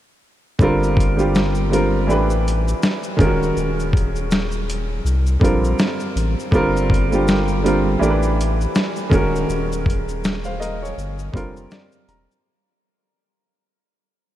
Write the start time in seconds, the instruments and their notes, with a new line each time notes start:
0.59 sub bass G1, upright piano D3 G3 C4 F4, kick, shaker
0.63 upright piano A#4
0.83 shaker
0.97 kick, closed hi-hat, shaker
1.16 upright piano D3 G3 C4 F4, shaker
1.20 upright piano G4
1.35 snare, shaker
1.55 shaker
1.70 upright piano D3 G3 C4 F4, closed hi-hat, shaker
1.74 upright piano A#4
2.07 sub bass A1, upright piano E3 A3 D4 G4, shaker
2.11 upright piano B4
2.30 shaker
2.48 closed hi-hat, shaker
2.68 shaker
2.83 snare, shaker
3.03 shaker
3.17 sub bass D#1, upright piano D#3 G#3 C#4 F4, kick, closed hi-hat, shaker
3.21 upright piano A#4
3.26 upright piano F#4
3.43 shaker
3.56 sub bass D#1, shaker
3.80 shaker
3.93 kick, closed hi-hat, shaker
4.16 shaker
4.31 snare, shaker
4.52 shaker
4.70 closed hi-hat, shaker
5.04 sub bass C2, shaker
5.27 shaker
5.39 sub bass A#1, upright piano D3 G3 C4 F4, kick
5.44 upright piano A#4, closed hi-hat, shaker
5.65 shaker
5.79 snare, shaker
6.00 shaker
6.16 sub bass A1, closed hi-hat, shaker
6.40 shaker
6.51 sub bass G1, upright piano D3 G3 C4 F4, kick, shaker
6.55 upright piano A#4
6.77 shaker
6.90 kick
6.94 closed hi-hat, shaker
7.11 upright piano D3 G3 C4 F4, shaker
7.15 upright piano G4
7.28 snare, shaker
7.48 shaker
7.62 upright piano D3 G3 C4 F4, closed hi-hat, shaker
7.67 upright piano A#4
7.99 sub bass A1, upright piano E3 A3 D4 G4, shaker
8.04 upright piano A#4
8.10 upright piano B4
8.23 shaker
8.41 closed hi-hat, shaker
8.61 shaker
8.75 snare, shaker
8.96 shaker
9.09 sub bass D#1, upright piano D#3 G#3 C#4 F#4, kick, closed hi-hat, shaker
9.14 upright piano A#4
9.36 shaker
9.49 sub bass D#1, shaker
9.73 shaker
9.86 kick, closed hi-hat, shaker
10.09 shaker
10.24 snare, shaker
10.44 upright piano C5 F5, shaker
10.60 upright piano A#4 D#5, closed hi-hat, shaker
10.82 upright piano G#4 C#5, shaker
10.97 sub bass G1, shaker
11.19 shaker
11.32 sub bass F1, upright piano D3 G3 C4 F4, kick
11.36 upright piano A#4, closed hi-hat, shaker
11.57 shaker
11.71 upright piano D5, snare, shaker
11.92 shaker
12.08 sub bass E1, upright piano A#5, closed hi-hat, shaker
12.32 shaker